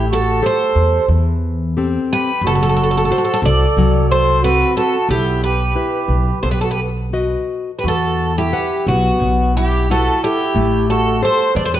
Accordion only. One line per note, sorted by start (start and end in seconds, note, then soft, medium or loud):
0.11 0.41 F#4 medium
0.43 1.06 A4 medium
2.12 2.42 G4 medium
2.45 3.40 F#4 medium
3.45 4.06 A4 medium
4.10 4.40 A4 medium
4.42 4.73 F#4 medium
4.78 5.08 F#4 medium
5.11 5.41 E4 medium
5.45 6.39 G4 medium
6.43 6.51 A4 medium
6.52 6.60 G4 medium
6.62 6.70 F#4 soft
6.73 6.80 G4 medium
7.79 7.85 G4 soft
7.85 8.33 F#4 medium
8.37 8.85 E4 medium
8.88 9.52 B3 medium
9.55 9.87 E4 medium
9.90 10.21 F#4 medium
10.24 10.86 E4 medium
10.91 11.21 F#4 medium
11.23 11.52 A4 medium
11.53 11.62 B4 medium
11.64 11.72 A4 medium
11.75 11.80 G4 medium